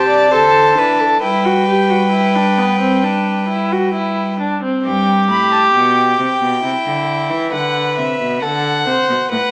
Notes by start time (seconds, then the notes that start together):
Already playing: C3 G4 A5
0.08 D5
0.32 D3 A4 C5
0.77 E3 D4 B4
1.00 A4
1.22 G3 E4 B4 G5
1.46 F#4
1.68 G4
1.90 F#4
2.12 E4
2.35 D4
2.58 B3
2.81 C4
3.03 D4
3.49 E4
3.72 F#4
3.94 E4
4.40 D4
4.63 C4
4.83 G2 G4 G5
5.29 A2 B5
5.53 A5
5.73 B2 G5
6.19 C3
6.40 B2
6.63 C3 E4
6.85 D3
7.30 E3
7.52 D3 B4 F#5
7.98 C3 E5
8.20 B2
8.42 D3 A4 F#5
8.86 C3 C5
9.09 B2
9.32 A2 B4 F#5